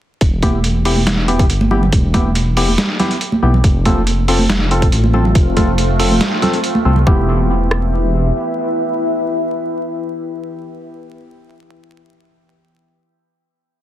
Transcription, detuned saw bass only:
0.21 1.06 E1 loud
1.07 1.48 E1 medium
1.50 1.91 G1 medium
1.93 2.77 E1 loud
3.43 3.62 B1 medium
3.64 4.48 F1 loud
4.50 4.91 F1 medium
4.92 5.34 A1 medium
5.35 6.20 F1 loud
6.85 7.05 C2 medium
7.07 8.31 E1 loud

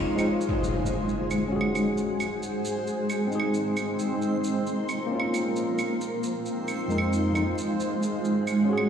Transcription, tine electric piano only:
0.00 0.15 G#3 medium
0.00 0.16 C4 medium
0.00 0.17 D#4 loud
0.16 0.25 G#3 medium
0.16 0.26 C4 medium
0.20 0.27 D#4 loud
1.48 2.25 C#4 medium
1.48 2.27 F#4 medium
1.56 2.29 G#4 medium
3.27 4.04 C4 medium
3.27 4.06 D#4 medium
3.35 4.08 G#4 medium
5.07 5.83 A#3 medium
5.11 5.85 C#4 medium
5.11 5.87 F4 medium
6.88 7.31 F2 medium
6.88 7.32 G#3 medium
6.88 7.32 C4 medium
6.92 7.33 D#4 medium
7.33 7.41 F2 medium
7.33 7.42 G#3 medium
7.33 7.43 C4 medium
7.33 7.43 D#4 medium
8.65 8.89 C#4 medium
8.69 8.89 F#4 medium
8.69 8.89 G#4 medium

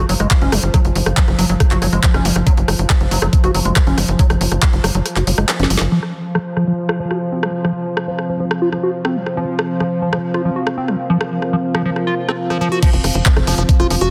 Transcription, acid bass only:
0.09 0.14 F#3 medium
0.20 0.28 G#3 medium
0.42 0.54 C#4 medium
0.52 0.60 F#3 medium
0.74 0.82 F#3 loud
1.17 1.20 F#3 medium
1.39 1.46 F#3 medium
1.49 1.55 F#3 medium
1.71 1.79 F#4 medium
1.82 1.87 F#3 medium
1.93 2.00 G#3 medium
2.14 2.26 C#4 medium
2.25 2.33 F#3 medium
2.47 2.54 F#3 loud
2.90 2.93 F#3 medium
3.11 3.19 F#3 medium
3.22 3.27 F#3 medium
3.44 3.51 F#4 medium
3.54 3.60 F#3 medium
3.65 3.73 G#3 medium
3.87 3.99 C#4 medium
3.98 4.05 F#3 medium
4.19 4.27 F#3 loud
4.62 4.65 F#3 medium
4.84 4.92 F#3 medium
4.95 5.00 F#3 medium
5.16 5.24 F#4 medium
5.27 5.32 F#3 medium
5.38 5.46 G#3 medium
5.59 5.72 C#4 medium
5.70 5.78 F#3 medium
5.92 6.00 F3 loud
6.35 6.38 F3 medium
6.57 6.64 F3 medium
6.67 6.73 F3 medium
6.89 6.97 F4 medium
7.00 7.05 F3 medium
7.11 7.18 F#4 medium
7.32 7.44 C4 medium
7.43 7.51 F3 medium
7.65 7.72 F3 loud
8.08 8.11 F3 medium
8.29 8.37 F3 medium
8.40 8.45 F3 medium
8.62 8.69 F4 medium
8.72 8.78 F3 medium
8.83 8.91 F#4 medium
9.05 9.17 C4 medium
9.16 9.23 F3 medium
9.37 9.45 F3 loud
9.80 9.83 F3 medium
10.02 10.10 F3 medium
10.13 10.18 F3 medium
10.34 10.42 F4 medium
10.45 10.50 F3 medium
10.56 10.64 F#4 medium
10.77 10.90 C4 medium
10.88 10.96 F3 medium
11.10 11.18 F3 loud
11.53 11.56 F3 medium
11.75 11.82 F3 medium
11.85 11.91 F3 medium
12.07 12.15 F4 medium
12.29 12.32 C4 medium
12.50 12.58 F3 medium
12.61 12.69 F3 loud
12.72 12.79 F#4 medium
12.82 12.90 F3 loud
13.26 13.29 F3 medium
13.47 13.55 F3 medium
13.58 13.63 F3 medium
13.80 13.87 F4 medium
13.90 13.96 F3 medium
14.01 14.09 F#4 medium

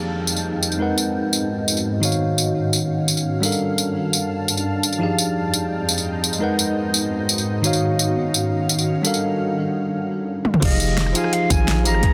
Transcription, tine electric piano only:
0.00 0.77 F3 medium
0.00 0.77 D#4 medium
0.00 0.78 G4 medium
0.00 0.78 G#4 medium
0.00 0.79 F5 medium
0.78 2.00 G#3 medium
0.78 2.00 D#4 medium
0.78 2.01 A#4 medium
0.78 2.01 B4 medium
0.82 2.02 F#5 medium
2.00 3.40 D#3 medium
2.00 3.40 D#4 medium
2.00 3.41 F#4 medium
2.00 3.42 C#5 medium
2.05 3.42 F5 medium
3.41 4.98 G3 medium
3.41 4.98 D4 medium
3.41 4.99 A4 medium
3.41 5.00 A#4 medium
3.46 5.00 F5 medium
4.99 6.38 F3 medium
4.99 6.39 D#4 medium
4.99 6.39 G4 medium
4.99 6.40 G#4 medium
5.03 6.41 F5 medium
6.39 7.61 G#3 medium
6.39 7.61 D#4 medium
6.39 7.62 A#4 medium
6.39 7.63 B4 medium
6.44 7.63 F#5 medium
7.62 9.01 D#3 medium
7.62 9.02 D#4 medium
7.62 9.03 F#4 medium
7.62 9.03 C#5 medium
7.67 9.04 F5 medium
9.02 10.59 G3 medium
9.02 10.60 D4 medium
9.02 10.60 A4 medium
9.02 10.61 A#4 medium
9.07 10.62 F5 medium
10.60 11.11 F3 loud
10.60 11.12 D#4 medium
10.60 11.13 G4 medium
10.60 11.14 G#4 medium
10.65 11.14 F5 loud
11.12 11.82 F3 medium
11.12 11.82 D#4 medium
11.12 11.83 F4 medium
11.12 11.84 G#4 medium
11.17 11.84 F5 loud
11.84 12.00 F3 medium
11.84 12.00 D#4 medium
11.84 12.01 G4 medium
11.84 12.01 G#4 medium
11.84 12.01 F5 medium
12.00 12.13 G#3 medium
12.00 12.13 D#4 medium
12.00 12.13 G#4 medium
12.00 12.13 B4 medium
12.05 12.13 G#5 loud

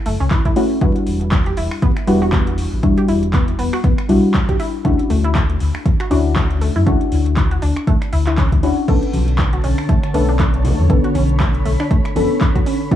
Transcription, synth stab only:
0.56 0.79 A3 loud
0.56 0.79 C#4 medium
0.56 0.79 E4 medium
0.56 0.79 F#4 loud
0.81 2.05 G3 medium
0.81 2.05 D4 medium
0.81 2.05 E4 medium
0.81 2.05 F#4 loud
2.07 2.80 G3 medium
2.07 2.80 D4 medium
2.07 2.81 E4 medium
2.07 2.81 F#4 loud
2.83 4.06 G3 medium
2.83 4.07 D4 medium
2.83 4.07 E4 medium
2.83 4.07 F#4 loud
4.09 4.82 G3 medium
4.09 4.82 D4 medium
4.09 4.82 E4 medium
4.09 4.82 F#4 loud
4.84 6.08 C#4 medium
4.84 6.08 D4 medium
4.84 6.08 E4 medium
4.84 6.09 F#4 loud
6.10 6.84 C#4 medium
6.10 6.84 D4 medium
6.10 6.84 E4 medium
6.10 6.84 F#4 loud
6.86 8.10 C#4 medium
6.86 8.10 D4 medium
6.86 8.10 E4 medium
6.86 8.10 F#4 loud
8.63 8.85 C#4 medium
8.63 8.86 D4 medium
8.63 8.86 E4 medium
8.63 8.86 F#4 loud
8.88 10.11 B3 medium
8.88 10.12 C#4 medium
8.88 10.12 D4 medium
8.88 10.12 A4 loud
10.14 10.87 B3 medium
10.14 10.87 C#4 medium
10.14 10.87 D4 medium
10.14 10.88 A4 loud
10.89 12.13 B3 medium
10.89 12.13 C#4 medium
10.89 12.13 D4 medium
10.89 12.14 A4 loud
12.15 12.89 B3 medium
12.15 12.89 C#4 medium
12.15 12.89 D4 medium
12.15 12.89 A4 loud
12.91 12.96 A3 medium
12.91 12.96 C#4 medium
12.91 12.96 E4 medium
12.91 12.96 F#4 loud

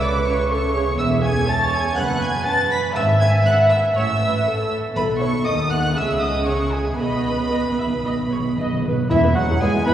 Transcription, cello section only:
0.00 0.94 C#3 medium
0.98 1.39 E2 medium
1.97 2.38 F#2 medium
2.95 3.37 G#2 medium
3.95 4.37 A2 medium
4.95 5.42 B2 medium
5.45 5.95 D#3 medium
5.95 6.99 C#3 medium
6.99 8.85 B2 medium
9.10 9.34 E3 medium
9.36 9.44 F#3 medium
9.61 9.69 G#3 medium
9.86 9.94 B3 medium

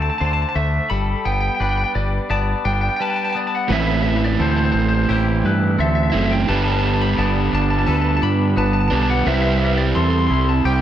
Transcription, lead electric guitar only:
0.02 0.09 A5 loud
0.10 0.18 A5 medium
0.18 0.25 A5 medium
0.25 0.33 A5 medium
0.33 0.41 A5 medium
0.42 0.48 A5 medium
0.49 0.57 A5 medium
0.56 0.92 E5 medium
0.90 1.26 B5 medium
1.25 1.31 G5 medium
1.32 1.39 G5 medium
1.40 1.47 G5 medium
1.47 1.54 G5 medium
1.55 1.61 G5 medium
1.62 1.68 G5 medium
1.69 1.76 G5 medium
1.77 1.83 G5 medium
1.84 1.91 G5 medium
1.95 2.31 D5 medium
2.30 2.66 A5 medium
2.65 2.73 G5 medium
2.73 2.81 G5 medium
2.81 2.89 G5 medium
2.89 2.96 G5 medium
2.96 3.04 G5 medium
3.02 3.12 G5 medium
3.02 3.09 A5 loud
3.10 3.21 G5 medium
3.10 3.16 A5 medium
3.16 3.24 A5 medium
3.22 3.29 G5 medium
3.22 3.32 A5 medium
3.30 3.38 G5 medium
3.30 3.39 A5 medium
3.36 3.68 D5 medium
3.36 3.47 A5 medium
3.47 3.55 A5 medium
3.55 3.71 F#5 medium
3.72 3.78 E5 medium
3.79 3.86 E5 medium
3.87 3.94 E5 medium
3.94 4.02 E5 medium
4.02 4.08 E5 medium
4.08 4.16 E5 medium
4.17 4.24 E5 medium
4.25 4.41 D5 medium
4.42 4.49 C5 medium
4.50 4.56 C5 medium
4.57 4.64 C5 medium
4.65 4.72 C5 medium
4.72 4.79 C5 medium
4.80 4.87 C5 medium
4.88 4.94 C5 medium
4.94 5.02 C5 medium
5.03 5.11 C5 medium
5.11 5.45 C5 loud
5.46 5.80 B4 medium
5.80 5.88 E5 loud
5.88 5.95 E5 medium
5.95 6.03 E5 loud
6.03 6.09 E5 medium
6.10 6.17 E5 loud
6.18 6.25 E5 medium
6.26 6.33 E5 medium
6.31 6.48 G5 loud
6.49 6.56 A5 loud
6.64 6.71 A5 medium
6.72 6.78 A5 medium
6.79 6.86 A5 loud
6.87 6.94 A5 medium
6.94 7.02 A5 medium
7.02 7.19 B5 loud
7.19 7.53 A5 loud
7.55 7.62 A5 loud
7.62 7.70 A5 medium
7.70 7.78 A5 medium
7.79 7.86 A5 medium
7.86 7.94 A5 loud
7.94 8.01 A5 medium
8.01 8.08 A5 loud
8.09 8.16 A5 medium
8.17 8.24 A5 medium
8.23 8.55 B5 loud
8.58 8.65 A5 loud
8.66 8.73 A5 medium
8.73 8.80 A5 loud
8.80 8.87 A5 loud
8.88 8.95 A5 loud
8.95 9.02 A5 medium
9.03 9.10 A5 loud
9.10 9.25 F#5 loud
9.27 9.34 E5 medium
9.34 9.41 E5 medium
9.42 9.49 E5 medium
9.50 9.58 E5 medium
9.58 9.64 E5 medium
9.65 9.72 E5 medium
9.72 9.77 E5 medium
9.78 9.96 D5 loud
9.95 10.02 C6 loud
10.03 10.10 C6 medium
10.10 10.18 C6 loud
10.18 10.26 C6 loud
10.27 10.33 C6 loud
10.34 10.41 C6 medium
10.41 10.49 C6 loud
10.49 10.64 A5 loud
10.65 10.73 G5 loud
10.74 10.81 G5 medium

